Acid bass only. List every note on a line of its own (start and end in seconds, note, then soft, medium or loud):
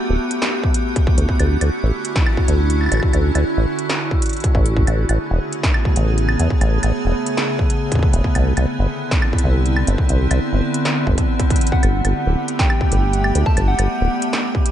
0.09 0.18 D1 medium
1.18 1.27 D2 medium
1.40 1.58 D2 loud
1.61 1.70 D2 loud
1.83 1.92 A1 medium
2.48 2.89 D2 medium
2.92 3.01 A1 medium
3.13 3.32 D2 loud
3.35 3.44 D2 loud
3.57 3.66 A1 medium
4.55 4.85 A1 medium
4.87 5.06 A1 loud
5.09 5.18 A1 loud
5.31 5.40 E1 medium
5.96 6.37 A1 medium
6.40 6.49 E2 medium
6.61 6.80 A1 loud
6.83 6.92 A1 loud
7.05 7.14 E1 medium
8.14 8.23 E1 medium
8.35 8.53 C2 loud
8.57 8.66 C2 loud
8.79 8.88 G1 medium
9.44 9.85 C2 medium
9.87 9.96 G1 medium
10.09 10.27 C2 loud
10.31 10.40 C2 medium
10.53 10.62 G1 medium
11.07 11.16 G1 medium
11.83 12.01 G1 loud
12.05 12.14 G1 loud
12.27 12.36 D1 medium
12.92 13.32 G1 medium
13.35 13.44 D2 medium
13.57 13.75 G1 loud
13.79 13.88 G1 loud
14.00 14.10 D1 medium